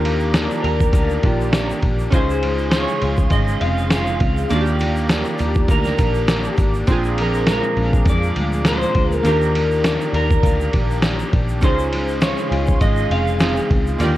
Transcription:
Already playing: picked electric bass D#2, steel-string acoustic guitar D#3 D4, synth keys A#3 D4 F4 G4, analog synth pad G4 D5 A#5 D6, clean electric guitar A#4
0.05 steel-string acoustic guitar A#3, ride
0.20 shaker
0.34 steel-string acoustic guitar D4, snare, ride, shaker
0.51 shaker
0.63 picked electric bass D#2, steel-string acoustic guitar G4, clean electric guitar A#4, ride
0.80 kick, shaker
0.93 picked electric bass D2, steel-string acoustic guitar A#3, kick, ride, shaker
1.10 shaker
1.23 picked electric bass A#1, synth keys A#3 D4 F4 G4, steel-string acoustic guitar D4, kick, ride
1.41 shaker
1.53 steel-string acoustic guitar G4, snare, ride, shaker
1.70 shaker
1.83 picked electric bass A#1, steel-string acoustic guitar D4, kick, ride
1.99 shaker
2.11 picked electric bass C#2, steel-string acoustic guitar C#3, synth keys C#4 D#4 F4, analog synth pad G#4 F5 G#5 C6, clean electric guitar C5, kick, ride, shaker
2.16 synth keys G#4
2.30 shaker
2.43 steel-string acoustic guitar G#3, ride
2.58 shaker
2.71 clean electric guitar C#5, snare, ride, shaker
2.88 shaker
3.02 picked electric bass C#2, steel-string acoustic guitar F4, ride
3.17 kick, shaker
3.30 picked electric bass G#1, clean electric guitar D#5, kick, ride, shaker
3.34 steel-string acoustic guitar G#3
3.48 shaker
3.61 picked electric bass F1, steel-string acoustic guitar C4, clean electric guitar F5, ride
3.78 shaker
3.90 steel-string acoustic guitar F4, clean electric guitar F5, snare, ride, shaker
4.07 shaker
4.20 picked electric bass C#2, steel-string acoustic guitar C4, kick, ride
4.37 shaker
4.50 picked electric bass D#2, steel-string acoustic guitar D#3, synth keys A#3 D4 F4, analog synth pad G4 D5 A#5 D6, clean electric guitar D5, ride, shaker
4.55 synth keys F#4
4.61 synth keys G4
4.66 shaker
4.79 steel-string acoustic guitar A#3, ride, shaker
4.96 shaker
5.09 steel-string acoustic guitar D4, snare, ride, shaker
5.25 shaker
5.38 picked electric bass D#2, steel-string acoustic guitar G4, ride, shaker
5.54 kick, shaker
5.68 picked electric bass D2, steel-string acoustic guitar A#3, clean electric guitar A#4, kick, ride, shaker
5.84 snare, shaker
5.98 picked electric bass A#1, steel-string acoustic guitar D4, kick, ride, shaker
6.15 shaker
6.28 steel-string acoustic guitar G4, snare, ride, shaker
6.44 shaker
6.58 picked electric bass G#1, steel-string acoustic guitar D4, kick, ride, shaker
6.74 shaker
6.87 picked electric bass A#1, steel-string acoustic guitar A#2, synth keys C4 D4 F4, analog synth pad G#4 F5, kick, ride, shaker
6.92 synth keys G#4
7.04 shaker
7.18 steel-string acoustic guitar F3, clean electric guitar A#4, ride
7.34 shaker
7.47 steel-string acoustic guitar G#3, snare, ride, shaker
7.51 clean electric guitar A#4
7.63 shaker
7.77 picked electric bass A#1, steel-string acoustic guitar D4, ride
7.93 kick, shaker
8.05 picked electric bass F2, steel-string acoustic guitar F3, clean electric guitar D5, kick, ride, shaker
8.23 shaker
8.36 picked electric bass D2, steel-string acoustic guitar G#3, ride
8.53 shaker
8.65 steel-string acoustic guitar D4, clean electric guitar C5, snare, ride, shaker
8.82 shaker
8.95 picked electric bass D2, steel-string acoustic guitar G#3, kick, ride
9.12 clean electric guitar A#4, shaker
9.23 picked electric bass D#2, steel-string acoustic guitar D#3, synth keys A#3 D4 F4, analog synth pad G4 D5, clean electric guitar A#4, ride, shaker
9.28 synth keys G4
9.42 shaker
9.55 steel-string acoustic guitar A#3, ride
9.71 shaker
9.84 steel-string acoustic guitar D4, snare, ride, shaker
10.01 shaker
10.13 picked electric bass D#2, steel-string acoustic guitar G4, clean electric guitar A#4, ride
10.31 kick, shaker
10.43 picked electric bass D2, steel-string acoustic guitar A#3, kick, ride, shaker
10.61 shaker
10.73 picked electric bass A#1, steel-string acoustic guitar D4, kick, ride
10.91 shaker
11.02 steel-string acoustic guitar G4, snare, ride, shaker
11.19 shaker
11.33 picked electric bass A#1, steel-string acoustic guitar D4, kick, ride
11.49 shaker
11.61 picked electric bass C#2, steel-string acoustic guitar C#3, synth keys C#4 D#4 F4, analog synth pad G#4 F5 G#5 C6, clean electric guitar C5, kick, ride, shaker
11.66 synth keys G#4
11.79 shaker
11.93 steel-string acoustic guitar G#3, ride
12.08 shaker
12.21 clean electric guitar C#5, snare, ride, shaker
12.38 shaker
12.51 picked electric bass C#2, steel-string acoustic guitar F4, ride
12.66 kick, shaker
12.81 picked electric bass G#1, steel-string acoustic guitar G#3, clean electric guitar D#5, kick, ride, shaker
12.97 shaker
13.10 picked electric bass F1, steel-string acoustic guitar C4, clean electric guitar F5, ride
13.27 shaker
13.40 synth keys C4 D#4 F4 G#4, steel-string acoustic guitar F4, snare, ride, shaker
13.57 shaker
13.71 picked electric bass C#2, steel-string acoustic guitar C4, kick, ride
13.87 shaker
13.98 picked electric bass D#2, synth keys D3 A#3 F4, steel-string acoustic guitar D#3, analog synth pad A#4 G5 A#5 D6, clean electric guitar D5, ride, shaker
14.03 synth keys G4

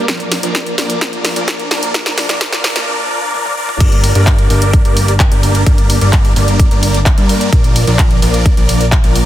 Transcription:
0.08 analog synth bass A#1, supersaw synth F3 A#3 A#4, kick, snare, closed hi-hat
0.20 closed hi-hat
0.32 snare, open hi-hat
0.43 analog synth bass A#1, supersaw synth F3 A#3 D4 A#4 D5, closed hi-hat
0.55 kick, snare, closed hi-hat
0.66 closed hi-hat
0.78 analog synth bass A#1, supersaw synth F3 A#3 D4 A#4 D5, snare, open hi-hat
0.90 closed hi-hat
1.01 supersaw synth F3 A#3 D4 A#4, kick, snare, closed hi-hat
1.13 closed hi-hat
1.25 snare, open hi-hat
1.36 analog synth bass A#1, supersaw synth F3 A#3 D4 A#4 D5, closed hi-hat
1.48 kick, snare, closed hi-hat
1.59 closed hi-hat
1.71 analog synth bass A#1, supersaw synth F3 A#3 D4 A#4 D5, snare, open hi-hat
1.83 closed hi-hat
1.94 supersaw synth F3 A#3 A#4, kick, snare, closed hi-hat
2.06 snare, closed hi-hat
2.18 snare, open hi-hat
2.29 analog synth bass A#1, supersaw synth F3 A#3 D4 A#4 D5, snare, closed hi-hat
2.41 supersaw synth F3, kick, snare, closed hi-hat
2.52 snare, closed hi-hat
2.64 snare, open hi-hat
2.76 analog synth bass A#1, supersaw synth F3 A#3 D4 A#4 D5, snare, closed hi-hat
2.87 supersaw synth F3 A#3 D4 A#4 D5
3.11 supersaw synth F3 A#3 D4 A#4 D5
3.34 supersaw synth F3 A#3 D4 A#4 D5, high tom
3.46 high tom
3.57 supersaw synth F3 A#3 D4 A#4 D5
3.69 mid tom
3.80 analog synth bass G1, supersaw synth G3 A#3 D4 A#4 D5, kick, closed hi-hat, crash
3.92 closed hi-hat
4.04 open hi-hat
4.15 analog synth bass G1, supersaw synth G3 A#3 D4 A#4 D5, closed hi-hat
4.27 kick, clap, closed hi-hat
4.39 closed hi-hat
4.50 analog synth bass G1, supersaw synth G3 A#3 D4 A#4 D5, open hi-hat
4.62 closed hi-hat
4.73 kick, closed hi-hat
4.85 analog synth bass G1, supersaw synth G3 A#3 D4 A#4 D5, closed hi-hat
4.97 open hi-hat
5.08 closed hi-hat
5.20 kick, clap, closed hi-hat
5.32 analog synth bass G1, supersaw synth G3 A#3 D4 A#4 D5, closed hi-hat
5.43 open hi-hat
5.55 closed hi-hat
5.66 supersaw synth G3 A#3 D4 A#4 D5, kick, closed hi-hat
5.78 closed hi-hat
5.90 open hi-hat
6.01 analog synth bass G1, supersaw synth G3 A#3 D4 A#4 D5, closed hi-hat
6.13 kick, clap, closed hi-hat
6.25 open hi-hat
6.36 analog synth bass G1, supersaw synth G3 A#3 D4 A#4 D5, open hi-hat
6.48 closed hi-hat
6.59 kick, closed hi-hat
6.71 analog synth bass G1, supersaw synth G3 A#3 D4 A#4 D5, closed hi-hat
6.83 open hi-hat
6.94 closed hi-hat
7.06 kick, clap, closed hi-hat
7.18 analog synth bass G2, supersaw synth G3 A#3 D4 A#4 D5, closed hi-hat
7.29 open hi-hat
7.41 closed hi-hat
7.53 analog synth bass A#1, kick, closed hi-hat
7.64 closed hi-hat
7.76 open hi-hat
7.87 analog synth bass A#1, supersaw synth F3 A#3 D4 A#4 D5, closed hi-hat
7.99 kick, clap, closed hi-hat
8.11 closed hi-hat
8.22 analog synth bass A#1, supersaw synth F3 A#3 D4 A#4 D5, open hi-hat
8.34 closed hi-hat
8.46 kick, closed hi-hat
8.57 analog synth bass A#1, supersaw synth F3 A#3 D4 A#4 D5, closed hi-hat
8.69 open hi-hat
8.81 closed hi-hat
8.92 kick, clap, closed hi-hat
9.04 analog synth bass A#1, supersaw synth F3 A#3 D4 A#4 D5, closed hi-hat
9.15 open hi-hat

